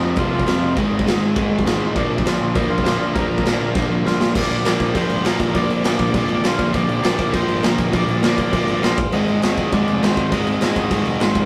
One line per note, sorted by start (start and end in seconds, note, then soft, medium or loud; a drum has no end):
0.00 0.14 F1 medium
0.00 0.16 F2 medium
0.00 0.16 C3 medium
0.00 0.16 F3 medium
0.00 0.16 G#3 medium
0.00 0.16 C4 medium
0.00 0.17 F4 medium
0.00 0.19 D#5 medium
0.00 0.15 D#6 medium
0.16 0.29 F1 loud
0.16 0.47 F2 medium
0.16 0.46 C3 medium
0.16 0.45 F3 medium
0.16 0.46 G#3 medium
0.16 0.45 C4 loud
0.16 0.31 F4 medium
0.16 0.45 F4 medium
0.16 0.31 F5 loud
0.16 kick loud
0.16 crash medium
0.32 0.44 F1 medium
0.32 0.74 F4 medium
0.32 0.78 F5 loud
0.40 kick medium
0.46 0.59 F1 medium
0.46 0.76 F2 medium
0.46 0.76 C3 medium
0.46 0.76 F3 medium
0.46 0.76 G#3 medium
0.46 0.76 C4 medium
0.46 0.76 F4 medium
0.46 snare loud
0.46 crash medium
0.62 0.74 F1 medium
0.76 0.89 G#1 loud
0.76 1.06 G#2 loud
0.76 1.05 D#3 medium
0.76 1.05 G#3 loud
0.76 1.05 C4 loud
0.76 1.04 D#4 loud
0.76 1.32 D#5 medium
0.76 1.32 D#6 medium
0.76 kick loud
0.76 crash medium
0.92 1.04 G#1 loud
0.99 kick medium
1.05 1.18 G#1 loud
1.05 1.34 G#2 medium
1.05 1.34 D#3 medium
1.05 1.34 G#3 medium
1.05 1.35 C4 medium
1.05 1.35 D#4 medium
1.05 snare loud
1.05 crash medium
1.22 1.34 G#1 medium
1.35 1.48 G#1 medium
1.35 1.65 G#2 medium
1.35 1.65 D#3 medium
1.35 1.65 G#3 medium
1.35 1.64 C4 loud
1.35 1.64 D#4 loud
1.35 kick loud
1.35 crash medium
1.51 1.63 G#1 medium
1.59 kick medium
1.65 1.78 G#1 medium
1.65 1.94 G#2 medium
1.65 1.95 D#3 medium
1.65 1.95 G#3 medium
1.65 1.95 C4 medium
1.65 1.95 D#4 loud
1.65 snare loud
1.65 crash medium
1.81 1.93 A1 medium
1.95 2.08 A#1 loud
1.95 2.25 A#2 loud
1.95 2.24 D3 loud
1.95 2.24 F3 loud
1.95 2.24 A#3 loud
1.95 2.24 D4 loud
1.95 2.24 D6 medium
1.95 kick loud
1.95 crash medium
1.99 2.28 D5 medium
2.10 2.22 A#1 loud
2.18 kick medium
2.24 2.38 A#1 medium
2.24 2.54 A#2 medium
2.24 2.54 D3 medium
2.24 2.55 F3 medium
2.24 2.56 A#3 medium
2.24 2.56 D4 medium
2.24 2.54 F4 medium
2.24 2.57 F5 medium
2.24 snare loud
2.24 crash medium
2.41 2.53 A#1 medium
2.55 2.68 A#1 loud
2.55 2.86 A#2 medium
2.55 2.85 D3 loud
2.55 2.86 F3 loud
2.55 2.85 A#3 loud
2.55 2.85 D4 loud
2.55 2.69 G4 medium
2.55 2.71 G5 medium
2.55 kick loud
2.55 crash medium
2.70 2.82 A#1 medium
2.70 3.12 F4 medium
2.70 3.17 F5 loud
2.78 kick medium
2.85 2.97 A#1 loud
2.85 3.14 A#2 medium
2.85 3.15 D3 medium
2.85 3.15 F3 medium
2.85 3.15 A#3 medium
2.85 3.16 D4 loud
2.85 snare loud
2.85 crash medium
3.00 3.12 A#1 medium
3.13 3.27 A#1 medium
3.13 3.45 A#2 loud
3.13 3.44 D3 loud
3.13 3.44 F3 loud
3.13 3.44 A#3 loud
3.13 3.44 D4 loud
3.13 3.70 A#4 medium
3.13 3.70 A#5 loud
3.13 kick loud
3.13 crash medium
3.30 3.42 A#1 loud
3.38 kick medium
3.45 3.57 A#1 medium
3.45 3.74 A#2 medium
3.45 3.75 D3 medium
3.45 3.75 F3 medium
3.45 3.75 A#3 medium
3.45 3.75 D4 medium
3.45 snare loud
3.45 crash medium
3.60 3.72 A#1 medium
3.75 3.87 A#1 loud
3.75 4.05 A#2 medium
3.75 4.05 D3 loud
3.75 4.05 F3 loud
3.75 4.04 A#3 medium
3.75 4.04 D4 loud
3.75 kick loud
3.75 snare medium
3.90 4.02 A#1 medium
4.04 4.16 A#1 loud
4.04 4.33 A#2 medium
4.04 4.34 D3 medium
4.04 4.34 F3 medium
4.04 4.34 A#3 medium
4.04 4.34 D4 loud
4.04 4.33 F4 medium
4.04 4.36 F5 loud
4.04 snare medium
4.19 4.31 A#1 medium
4.19 snare loud
4.34 4.46 A#1 loud
4.34 4.65 A#2 loud
4.34 4.64 D3 loud
4.34 4.65 F3 loud
4.34 4.64 A#3 loud
4.34 4.64 F4 loud
4.34 4.63 D5 loud
4.34 4.62 D6 medium
4.34 kick loud
4.34 crash loud
4.34 crash medium
4.50 4.61 A#1 loud
4.50 crash medium
4.64 4.76 A#1 loud
4.64 4.94 A#2 medium
4.64 4.93 D3 medium
4.64 4.94 F3 medium
4.64 4.94 A#3 medium
4.64 4.95 F4 medium
4.64 4.95 D5 loud
4.64 4.92 D6 medium
4.64 snare loud
4.64 crash medium
4.80 4.91 A#1 medium
4.80 kick medium
4.80 crash medium
4.94 5.06 A#1 loud
4.94 5.25 A#2 medium
4.94 5.24 D3 medium
4.94 5.24 F3 loud
4.94 5.24 A#3 medium
4.94 5.23 F4 medium
4.94 5.26 C5 loud
4.94 5.23 C6 medium
4.94 kick loud
4.94 crash medium
5.10 5.21 G#1 medium
5.10 crash medium
5.24 5.36 A#1 loud
5.24 5.54 A#2 medium
5.24 5.53 D3 medium
5.24 5.54 F3 medium
5.24 5.55 A#3 medium
5.24 5.55 F4 loud
5.24 5.56 A#4 medium
5.24 5.52 A#5 medium
5.24 snare loud
5.24 crash medium
5.40 5.51 A#1 loud
5.40 kick loud
5.40 crash medium
5.54 5.66 A#1 loud
5.54 5.85 A#2 loud
5.54 5.84 D3 loud
5.54 5.85 F3 loud
5.54 5.84 A#3 loud
5.54 5.84 F4 loud
5.54 5.85 D5 loud
5.54 5.82 D6 medium
5.54 kick loud
5.54 crash medium
5.70 5.81 A#1 loud
5.70 crash medium
5.84 5.95 A#1 loud
5.84 6.14 A#2 medium
5.84 6.14 D3 medium
5.84 6.14 F3 medium
5.84 6.15 A#3 medium
5.84 6.15 F4 loud
5.84 6.47 D5 loud
5.84 6.41 D6 medium
5.84 snare loud
5.84 crash medium
5.99 6.10 A#1 medium
5.99 kick medium
5.99 crash medium
6.14 6.25 A#1 loud
6.14 6.45 A#2 medium
6.14 6.44 D3 medium
6.14 6.44 F3 medium
6.14 6.44 A#3 medium
6.14 6.44 F4 loud
6.14 kick loud
6.14 crash medium
6.29 6.40 G#1 medium
6.29 crash medium
6.44 6.56 A#1 loud
6.44 6.73 A#2 medium
6.44 6.73 D3 medium
6.44 6.74 F3 medium
6.44 6.74 A#3 medium
6.44 6.74 F4 medium
6.44 6.73 F4 medium
6.44 6.76 F5 loud
6.44 snare loud
6.44 crash medium
6.59 6.70 A#1 medium
6.59 kick loud
6.59 crash medium
6.73 6.85 A#1 loud
6.73 7.04 A#2 loud
6.73 7.03 D3 loud
6.73 7.04 F3 loud
6.73 7.03 A#3 loud
6.73 7.02 F4 loud
6.73 7.03 D5 loud
6.73 7.02 D6 medium
6.73 kick loud
6.73 crash medium
6.89 7.00 A#1 loud
6.89 crash medium
7.03 7.15 A#1 loud
7.03 7.33 A#2 medium
7.03 7.33 D3 medium
7.03 7.33 F3 medium
7.03 7.34 A#3 medium
7.03 7.34 F4 loud
7.03 7.35 D5 loud
7.03 7.32 D6 medium
7.03 snare loud
7.03 crash medium
7.19 7.30 A#1 medium
7.19 kick medium
7.19 crash medium
7.34 7.45 A#1 loud
7.34 7.63 A#2 medium
7.34 7.62 D3 medium
7.34 7.62 F3 medium
7.34 7.62 A#3 loud
7.34 7.61 F4 medium
7.34 7.65 C5 loud
7.34 7.62 C6 medium
7.34 kick loud
7.34 crash medium
7.48 7.60 G#1 medium
7.48 crash medium
7.63 7.75 A#1 loud
7.63 7.92 A#2 medium
7.63 7.92 D3 medium
7.63 7.92 F3 medium
7.63 7.92 A#3 medium
7.63 7.93 F4 loud
7.63 7.88 A#4 medium
7.63 7.85 A#5 medium
7.63 snare loud
7.63 crash medium
7.78 7.90 A#1 loud
7.78 kick loud
7.78 crash medium
7.87 7.94 D#5 medium
7.93 8.05 A#1 loud
7.93 8.23 A#2 loud
7.93 8.22 D3 loud
7.93 8.22 F3 loud
7.93 8.22 A#3 loud
7.93 8.22 F4 loud
7.93 8.22 D5 loud
7.93 8.22 D6 medium
7.93 kick loud
7.93 crash medium
8.08 8.19 A#1 loud
8.08 crash medium
8.23 8.34 A#1 medium
8.23 8.52 A#2 medium
8.23 8.52 D3 medium
8.23 8.53 F3 medium
8.23 8.53 A#3 medium
8.23 8.53 F4 medium
8.23 8.85 D5 loud
8.23 8.80 D6 medium
8.23 snare loud
8.23 crash medium
8.38 8.49 A#1 medium
8.38 kick medium
8.38 crash medium
8.53 8.64 A#1 loud
8.53 8.82 A#2 medium
8.53 8.82 D3 medium
8.53 8.82 F3 medium
8.53 8.82 A#3 medium
8.53 8.81 F4 medium
8.53 kick loud
8.53 crash loud
8.67 8.79 G#1 medium
8.67 crash medium
8.82 8.94 A#1 loud
8.82 8.97 A#2 medium
8.82 8.97 D3 medium
8.82 8.97 F3 medium
8.82 8.97 A#3 medium
8.82 8.97 F4 medium
8.82 9.11 F4 medium
8.82 9.14 F5 medium
8.82 snare loud
8.82 crash medium
8.98 9.09 G#1 medium
8.98 kick loud
8.98 crash medium
9.12 9.24 G#1 loud
9.12 9.43 G#2 loud
9.12 9.42 D#3 loud
9.12 9.42 G#3 loud
9.12 9.42 C4 loud
9.12 9.42 D#4 loud
9.12 9.41 D#5 loud
9.12 9.41 D#6 medium
9.12 crash medium
9.28 9.39 G#1 loud
9.28 crash medium
9.42 9.54 G#1 loud
9.42 9.71 G#2 medium
9.42 9.72 D#3 medium
9.42 9.71 G#3 medium
9.42 9.73 C4 medium
9.42 9.73 D#4 loud
9.42 9.73 D#5 loud
9.42 9.70 D#6 medium
9.42 snare loud
9.42 crash medium
9.58 9.69 G#1 medium
9.58 kick medium
9.58 crash medium
9.72 9.84 G#1 loud
9.72 10.02 G#2 medium
9.72 10.03 D#3 medium
9.72 10.02 G#3 medium
9.72 10.02 C4 medium
9.72 10.03 D#4 loud
9.72 10.03 D5 medium
9.72 10.00 D6 medium
9.72 kick loud
9.72 crash medium
9.88 9.99 F1 medium
9.88 crash medium
10.03 10.14 G#1 loud
10.03 10.31 G#2 medium
10.03 10.31 D#3 medium
10.03 10.32 G#3 medium
10.03 10.32 C4 medium
10.03 10.33 D#4 loud
10.03 10.33 C5 medium
10.03 10.31 C6 medium
10.03 snare loud
10.03 crash medium
10.17 10.28 G#1 loud
10.17 kick loud
10.17 crash medium
10.32 10.43 G#1 loud
10.32 10.61 G#2 loud
10.32 10.61 D#3 loud
10.32 10.61 G#3 loud
10.32 10.61 C4 loud
10.32 10.61 D#4 loud
10.32 10.58 D#5 loud
10.32 10.59 D#6 medium
10.32 kick loud
10.32 crash loud
10.47 10.58 G#1 loud
10.47 crash medium
10.60 10.72 G#1 loud
10.60 10.89 G#2 medium
10.60 10.90 D#3 medium
10.60 10.90 G#3 medium
10.60 10.91 C4 medium
10.60 10.91 D#4 loud
10.60 11.22 D#5 loud
10.60 11.16 D#6 medium
10.60 snare loud
10.60 crash medium
10.76 10.88 G#1 medium
10.76 kick medium
10.76 crash medium
10.90 11.02 G#1 loud
10.90 11.21 G#2 medium
10.90 11.21 D#3 medium
10.90 11.20 G#3 medium
10.90 11.21 C4 medium
10.90 11.21 D#4 medium
10.90 kick loud
10.90 crash loud
11.05 11.16 F1 medium
11.05 crash medium
11.19 11.32 G#1 loud
11.19 11.45 G#2 medium
11.19 11.45 D#3 medium
11.19 11.45 G#3 loud
11.19 11.45 C4 medium
11.19 11.45 D#4 loud
11.19 11.45 F4 medium
11.19 11.45 F5 medium
11.19 snare loud
11.19 crash medium
11.35 11.45 G#1 medium
11.35 kick loud
11.35 crash medium